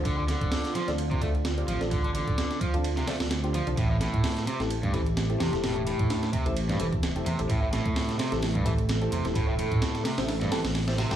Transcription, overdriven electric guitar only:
X:1
M:4/4
L:1/16
Q:"Swing 16ths" 1/4=129
K:Aphr
V:1 name="Overdriven electric guitar" clef=bass
D, D, D,4 F, z2 C, A, z3 F, z | D, D, D,4 F, z2 C, A, z3 F, z | A,, A,, A,,4 C, z2 G,, E, z3 C, z | A,, A,, A,,4 C, z2 G,, E, z3 C, z |
A,, A,, A,,4 C, z2 G,, E, z3 C, z | A,, A,, A,,4 C, z2 G,, E, z3 C, z |]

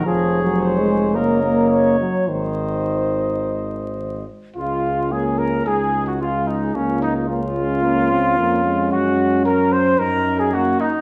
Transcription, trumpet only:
X:1
M:4/4
L:1/16
Q:1/4=110
K:Db
V:1 name="Trumpet"
d8 e8 | e12- e2 z2 | F4 A2 B2 A3 G F2 E2 | D2 E2 F12 |
G4 B2 c2 B3 A G2 E2 |]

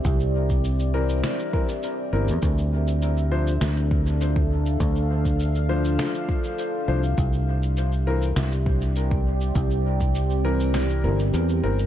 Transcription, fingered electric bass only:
X:1
M:4/4
L:1/16
Q:1/4=101
K:Cmix
V:1 name="Fingered electric bass" clef=bass
C,,8 z6 G,,, E,, | D,,8 D,,8 | D,,8 z6 C,,2 | C,,8 C,,8 |
C,,8- C,,2 G,,,2 E,,2 G,,,2 |]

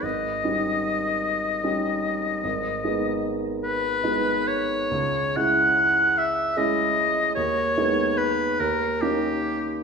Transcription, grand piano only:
X:1
M:12/8
L:1/8
Q:3/8=50
K:G#m
V:1 name="Grand piano"
G,,, [=G,CD]3 [G,CD]2 ^G,,, [^G,B,D]3 [G,B,D]2 | C,, [G,CE]3 [G,CE]2 D,, [G,B,D]2 D,, [A,CD]2 |]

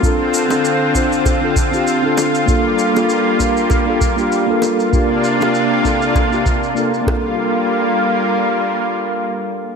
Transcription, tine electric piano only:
X:1
M:4/4
L:1/16
Q:"Swing 16ths" 1/4=98
K:Gm
V:1 name="Tine electric piano"
[CDFA]3 [CDFA]3 [CDFc]3 [CDFA] z [CDFG]2 [CDFA]3 | [B,DFA]3 [B,DFA]3 [B,DFB]3 [B,DFA] z [B,DFG]2 [B,DFA]3 | [B,DFG]3 [B,DFG]3 [B,DFA]3 [B,DFG] z2 [B,DFA] z [B,DFA]2- | [B,DFA]16 |]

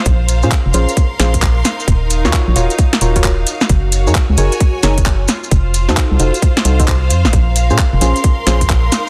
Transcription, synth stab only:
X:1
M:4/4
L:1/16
Q:"Swing 16ths" 1/4=132
K:Bbm
V:1 name="Synth stab"
z3 [DFAc] z2 [DFAc] z3 [DFAc] z4 z | z3 [FGBd]3 [FGBd] z3 [FGBd] [FGBd] z4 | z3 [EABd] z2 [EABd] z3 [EABd] z4 z | z3 [EG=Ac]3 [EGAc] z3 [EGAc] [EGAc] z4 |
z3 [DFAc] z2 [DFAc] z3 [DFAc] z4 z |]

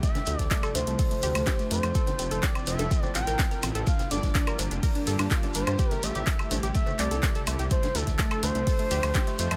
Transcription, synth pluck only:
X:1
M:4/4
L:1/16
Q:1/4=125
K:Dm
V:1 name="Synth pluck"
A, z A, A, A, A A, A, A A, G A, G A, A, A, | A C C A C C C A C C C B C B C A | D z D D D B D D B D A D F D D D | G A, A, G A, A, A, G A, A, A, A A, A A, G |
A, z A, A, A, A A, A, A A, G A, G A, A, A, |]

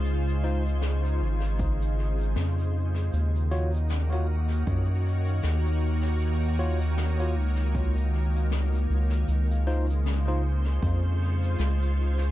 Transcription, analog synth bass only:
X:1
M:4/4
L:1/8
Q:"Swing 16ths" 1/4=78
K:Ebdor
V:1 name="Analog synth bass" clef=bass
D,,3 A,,,3 F,,2 | E,,4 G,,2 E,,2- | E,,3 D,,4 D,, | D,,4 F,,2 D,,2 |]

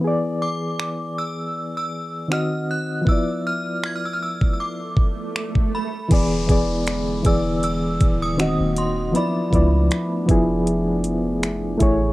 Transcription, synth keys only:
X:1
M:4/4
L:1/8
Q:"Swing 16ths" 1/4=79
K:Emix
V:1 name="Synth keys"
[E,B,Gd]6 [^D,^B,F^d]2 | [=F,B,Ed]6- [F,B,Ed] z | [E,B,Gd] [E,B,Gd] z [E,B,Gd]3 [^D,^B,F^d]2 | [=F,B,Ed] [F,B,Ed] z [F,B,EG]3 z [A,EGc] |]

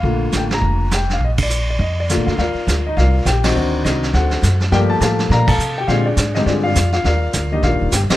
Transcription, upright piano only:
X:1
M:4/4
L:1/8
Q:"Swing" 1/4=205
K:Bb
V:1 name="Upright piano"
f2 g b3 g f | e d2 d e d2 [Ff] | [FBdf]3 [Ee] [FBdf]2 [Gg] [ce]- | [ce]2 [E^Fe]2 [FAc^f]3 z |
[Bdg] [Aa] [Afa]2 [Bdfb] [Afa]2 [Gg] | [F_Adf] [DAd]2 [Ee] [DFAd] [Fdf]2 [Ff] | [FBdf]3 [Ee] [FBdf]2 [Gg] [Ece] |]
V:2 name="Upright piano"
[D,A,B,F]4- [D,A,B,F] z3 | z6 [D,A,B,F]2 | z6 z [E,CE_G] | [E,CD^F]4- [E,CDF] z3 |
[F,A,B,G]4- [F,A,B,G] z3 | [D,_A,CG] z2 [D,A,CG]3 z2 | z3 [E,B,DG]3 z [E,A,CG] |]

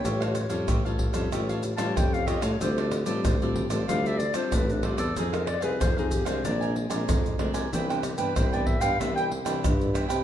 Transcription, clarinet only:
X:1
M:4/4
L:1/16
Q:1/4=94
K:C
V:1 name="Clarinet"
_d4- d z6 a g ^e _e ^c | c2 z6 f e d c B D F A | _A _B d =B c _E G c d2 z6 | z D G B c d e f e g z6 |]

